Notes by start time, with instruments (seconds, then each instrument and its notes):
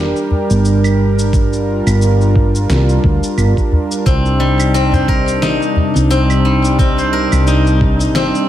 Already playing: fretless electric bass F1, analog synth pad G3 D4 G4 A#4
0.16 shaker
0.31 udu
0.50 fretless electric bass G1, shaker
0.65 shaker
0.84 claves, shaker
1.19 shaker
1.33 analog synth pad F4, kick, shaker
1.53 shaker
1.87 fretless electric bass G1, claves, shaker
2.02 shaker
2.21 shaker
2.36 kick
2.55 shaker
2.70 fretless electric bass C2, snare, shaker
2.89 shaker
3.04 fretless electric bass D2, kick, udu
3.23 shaker
3.37 fretless electric bass G1, claves, shaker
3.57 kick, shaker
3.72 udu
3.91 shaker
4.06 fretless electric bass C2, analog synth pad C3 G3 D#4, guzheng C4, kick, shaker
4.26 shaker
4.40 guzheng G3
4.60 claves, shaker
4.74 guzheng C4, shaker
4.93 guzheng C5, udu, shaker
5.08 guzheng A#4, kick
5.28 shaker
5.42 fretless electric bass A#1, guzheng D#4, snare, shaker
5.62 shaker
5.76 udu
5.96 fretless electric bass C2, shaker
6.11 guzheng C4, shaker
6.30 claves, shaker
6.45 guzheng G3
6.64 shaker
6.79 guzheng C4, kick, shaker
6.98 guzheng C5, shaker
7.13 guzheng A#4
7.32 fretless electric bass C2, claves, shaker
7.47 guzheng D#4, shaker
7.67 shaker
7.81 kick
8.00 shaker
8.15 fretless electric bass G1, guzheng C4, snare, shaker
8.35 shaker